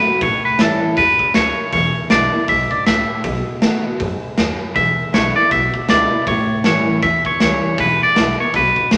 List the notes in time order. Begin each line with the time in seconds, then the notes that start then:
Already playing: F#2 B4
0.05 B3 F#4, muted upright bass stroke
0.21 A1 A2 C#5, kick, open hi-hat
0.43 B4, muted upright bass stroke
0.58 G2 E3 G3 C#4 E4 A4, snare, open hi-hat
0.81 C#4 E4
0.97 E2 G2 B4, kick, open hi-hat
1.19 kick
1.34 C#2 F#2 C#5, snare, open hi-hat
1.72 E1 E2 C#5, kick, open hi-hat
2.10 B1 D3 G#3 B3 E4 D5, snare, open hi-hat
2.33 B3 E4, muted upright bass stroke
2.48 B1 G#2 E5, kick, open hi-hat
2.71 D5, kick
2.86 C#2 A2 E5, snare, open hi-hat
3.24 B1 B2, kick, open hi-hat
3.47 muted upright bass stroke
3.62 D#3 A3 B3 F#4, snare, open hi-hat
3.84 G#2 B3 F#4
4.00 F#2 G#2, kick, open hi-hat
4.22 muted upright bass stroke
4.38 D#2 F#2, snare, open hi-hat
4.75 E1 E2 E5, kick, open hi-hat
4.98 muted upright bass stroke
5.13 B1 D3 G#3 B3 E4 C#5, snare, open hi-hat
5.36 B3 E4 D5
5.51 B1 B2 E5, kick, open hi-hat
5.74 kick
5.88 C#2 D3 G#3 B3 E4 D5, snare, open hi-hat
6.11 B3 E4
6.27 A1 A2 C#5, kick, open hi-hat
6.50 muted upright bass stroke
6.64 G2 E3 G3 C#4 E4 C#5, snare, open hi-hat
6.87 C#4 E4
7.02 E2 E5, kick, open hi-hat
7.25 C#5, kick
7.40 C#2 E3 G3 C#4 E4 C#5, snare, open hi-hat
7.78 E1 E2 B4, kick, open hi-hat
8.03 D5
8.16 B1 D3 G#3 B3 E4, snare, open hi-hat
8.38 B3 E4 C#5
8.54 B1 B2 B4, kick, open hi-hat
8.76 kick
8.91 C#2 D3 G#3 B3 E4, snare, open hi-hat